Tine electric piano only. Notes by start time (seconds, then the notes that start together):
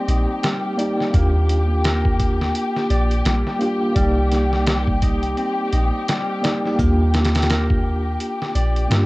Already playing: A#3 D#4 G4 D5
0.77 A#3 D#4 D5
0.81 G4
1.10 A#3 D4
1.16 F4 G4
3.59 A#3 D4 F4
3.63 G4
3.92 A#3 D5
3.98 D#4 G4
6.42 A#3 D#4 D5
6.46 G4
6.75 A#3 D4
6.80 F4 G4
8.88 A#3 D4 F4
8.93 G4